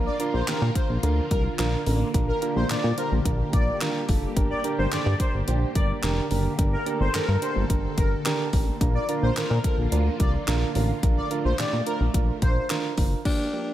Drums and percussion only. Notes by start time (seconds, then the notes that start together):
0.20 closed hi-hat
0.48 snare, clap, closed hi-hat
0.75 kick, closed hi-hat
1.03 closed hi-hat
1.31 kick, closed hi-hat
1.59 snare, clap, closed hi-hat
1.86 open hi-hat
2.14 kick, closed hi-hat
2.42 closed hi-hat
2.70 snare, clap, closed hi-hat
2.98 closed hi-hat
3.25 kick, closed hi-hat
3.53 kick, closed hi-hat
3.81 snare, clap, closed hi-hat
4.09 kick, open hi-hat
4.37 kick, closed hi-hat
4.64 closed hi-hat
4.92 snare, clap, closed hi-hat
5.20 kick, closed hi-hat
5.48 closed hi-hat
5.75 kick, closed hi-hat
6.03 snare, clap, closed hi-hat
6.31 open hi-hat
6.59 kick, closed hi-hat
6.86 closed hi-hat
7.14 snare, clap, closed hi-hat
7.42 closed hi-hat
7.70 kick, closed hi-hat
7.98 kick, closed hi-hat
8.25 snare, clap, closed hi-hat
8.53 kick, open hi-hat
8.81 kick, closed hi-hat
9.09 closed hi-hat
9.36 snare, clap, closed hi-hat
9.64 kick, closed hi-hat
9.92 closed hi-hat
10.20 kick, closed hi-hat
10.48 snare, clap, closed hi-hat
10.75 open hi-hat
11.03 kick, closed hi-hat
11.31 closed hi-hat
11.59 snare, clap, closed hi-hat
11.87 closed hi-hat
12.14 kick, closed hi-hat
12.42 kick, closed hi-hat
12.70 snare, clap, closed hi-hat
12.97 kick, open hi-hat
13.25 kick, crash